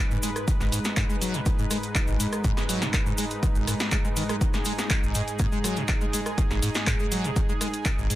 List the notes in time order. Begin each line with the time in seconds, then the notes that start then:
Already playing: G#2 G#3 D#4 B4
0.11 G#2, cabasa
0.23 G#3, open hi-hat, cabasa
0.36 cross-stick, closed hi-hat, cabasa
0.48 D#3, kick, closed hi-hat, cabasa
0.60 G#1, snare, cabasa
0.72 G#2, open hi-hat, cabasa
0.84 snare, closed hi-hat, cabasa
0.97 G#2, kick, cross-stick, clap, closed hi-hat, cabasa
1.10 G#3, cabasa
1.21 F#3, open hi-hat, cabasa
1.34 B2, closed hi-hat, cabasa
1.46 D#3, kick, closed hi-hat, cabasa
1.59 G#2, cabasa
1.71 G#3, cross-stick, open hi-hat, cabasa
1.83 closed hi-hat, cabasa
1.95 D#3, kick, clap, closed hi-hat, cabasa
2.07 G#1, cabasa
2.20 G#2, open hi-hat, cabasa
2.33 cross-stick, closed hi-hat, cabasa
2.44 G#2, kick, closed hi-hat, cabasa
2.57 G#3, snare, cabasa
2.69 F#3, open hi-hat, cabasa
2.82 B2, snare, closed hi-hat, cabasa
2.94 D#3, kick, cross-stick, clap, closed hi-hat, cabasa
3.06 G#2, cabasa
3.18 G#3, open hi-hat, cabasa
3.30 closed hi-hat, cabasa
3.43 D#3, kick, closed hi-hat, cabasa
3.55 G#1, cabasa
3.67 G#2, cross-stick, open hi-hat, cabasa
3.80 snare, closed hi-hat, cabasa
3.91 G#3, kick, clap, closed hi-hat, cabasa
4.05 G#3, cabasa
4.16 D#3, open hi-hat, cabasa
4.29 G#3, cross-stick, closed hi-hat, cabasa
4.41 D#3 G#4, kick, closed hi-hat, cabasa
4.53 G#3, snare, cabasa
4.65 G#3, open hi-hat, cabasa
4.79 snare, closed hi-hat, cabasa
4.90 D#3, kick, cross-stick, clap, closed hi-hat, cabasa
5.03 G#1, cabasa
5.14 G#2, open hi-hat, cabasa
5.28 closed hi-hat, cabasa
5.39 G#2, kick, closed hi-hat, cabasa
5.52 G#3, cabasa
5.64 F#3, cross-stick, open hi-hat, cabasa
5.76 B2, closed hi-hat, cabasa
5.88 D#3, kick, clap, closed hi-hat, cabasa
6.01 G#3, cabasa
6.13 G#3, open hi-hat, cabasa
6.26 cross-stick, closed hi-hat, cabasa
6.38 D#3, kick, closed hi-hat, cabasa
6.51 G#1, snare, cabasa
6.62 G#2, open hi-hat, cabasa
6.74 snare, closed hi-hat, cabasa
6.87 G#2, kick, cross-stick, clap, closed hi-hat, cabasa
6.99 G#3, cabasa
7.12 F#3, open hi-hat, cabasa
7.24 B2, closed hi-hat, cabasa
7.36 D#3, kick, closed hi-hat, cabasa
7.49 G#3, cabasa
7.61 G#3, cross-stick, open hi-hat, cabasa
7.73 closed hi-hat, cabasa
7.85 D#3, kick, clap, closed hi-hat, cabasa
7.98 G#1, cabasa
8.10 G#2, open hi-hat, cabasa